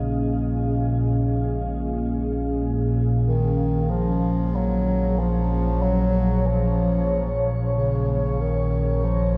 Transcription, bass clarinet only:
Already playing: C#3
3.27 D#3
3.90 F3
4.55 F#3
5.19 F3
5.82 F#3
6.46 F3
7.76 C#3
8.41 D#3
9.04 F3

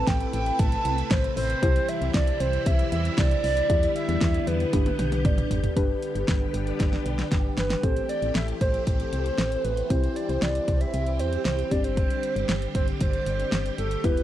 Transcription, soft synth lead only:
0.07 G5
0.33 G5
0.59 A5
1.11 C5
1.37 C5
1.89 E5
2.15 D5
2.41 C5
2.66 E5
2.92 E5
3.18 D5
3.44 D5
3.95 E5
4.47 B4
7.57 B4
7.83 C5
8.09 D5
8.35 E5
8.61 C5
8.87 C5
9.64 B4
9.90 C5
10.16 D5
10.29 C5
10.42 D5
10.81 E5
11.20 C5
11.71 D5
11.84 C5
12.75 C5
13.01 C5
13.78 A4
14.04 B4

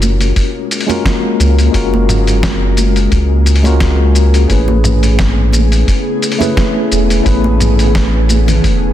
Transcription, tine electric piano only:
Already playing: G#3 C#4 F4 F#4 A#4
0.87 G#3 C#4 F4 F#4 A#4
1.72 G#3 C#4 F4 F#4
1.76 A#4
3.63 G#3 C#4 F4 F#4
3.67 A#4
4.48 A3 C#4 E4 G#4
4.52 B4
6.38 A3 C#4 E4 G#4
6.42 B4
7.23 A3 C#4 E4 G#4
7.27 B4

